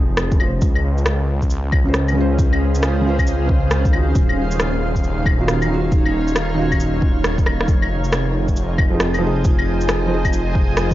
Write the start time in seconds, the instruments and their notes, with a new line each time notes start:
Already playing: detuned saw bass F1, felt piano F3 C4 D#4 G#4
0.17 cross-stick, shaker
0.31 kick, shaker
0.36 felt piano C#3 C#4
0.40 felt piano F4 C5, claves
0.61 detuned saw bass C#2, ambient pad C#4, kick, shaker
0.75 claves
0.84 ambient pad G#4
0.98 shaker
1.06 cross-stick, shaker
1.18 ambient pad C5 F5
1.42 kick, shaker
1.50 shaker
1.72 kick, claves
1.84 felt piano C#3 C#4 F4
1.88 felt piano C5
1.94 cross-stick, shaker
2.08 claves, shaker
2.13 felt piano C#3 C#4
2.18 felt piano F4 C5
2.39 kick, shaker
2.53 claves
2.75 shaker
2.83 cross-stick, shaker
3.01 felt piano C#3 C#4
3.06 felt piano F4 C5
3.19 kick, claves, shaker
3.27 shaker
3.49 kick
3.71 cross-stick, shaker
3.85 kick, shaker
3.89 felt piano D#3 C#4, claves
3.94 felt piano F4 F#4
4.15 detuned saw bass D#1, ambient pad D#4, kick, shaker
4.29 claves
4.33 ambient pad C#5
4.51 shaker
4.60 cross-stick, shaker
4.96 kick, shaker
5.04 shaker
5.26 kick, claves
5.37 felt piano D#3 C#4 F4
5.41 felt piano F#4
5.48 cross-stick, shaker
5.62 claves, shaker
5.66 felt piano D#3 C#4
5.71 felt piano F4 F#4
5.92 kick, shaker
6.06 claves
6.28 shaker
6.36 cross-stick, shaker
6.54 felt piano D#3 C#4
6.59 felt piano F4 F#4
6.72 kick, claves, shaker
6.80 shaker
7.02 kick
7.24 cross-stick, shaker
7.38 kick, shaker
7.46 cross-stick, claves
7.61 cross-stick
7.67 detuned saw bass F1, ambient pad F4, kick, shaker
7.78 ambient pad C5, claves
7.92 ambient pad G#5
8.04 shaker
8.12 ambient pad D#5, cross-stick, shaker
8.48 kick, shaker
8.56 shaker
8.78 kick, claves
8.90 felt piano F3 C4 D#4 G#4
9.00 cross-stick, shaker
9.14 claves, shaker
9.19 felt piano F3 C4
9.24 felt piano D#4 G#4
9.44 kick, shaker
9.59 claves
9.81 shaker
9.89 cross-stick, shaker
10.06 felt piano F3 C4
10.11 felt piano D#4 G#4
10.25 kick, claves, shaker
10.33 shaker
10.55 kick
10.77 cross-stick, shaker